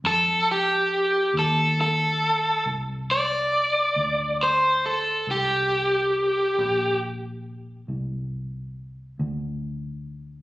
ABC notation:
X:1
M:12/8
L:1/8
Q:3/8=46
K:F
V:1 name="Overdriven electric guitar"
A G2 A A2 z d3 c A | G4 z8 |]
V:2 name="Fingered electric bass" clef=bass
F,,3 _E,,3 C,,3 D,,3 | C,,3 B,,,3 C,,3 D,,3 |]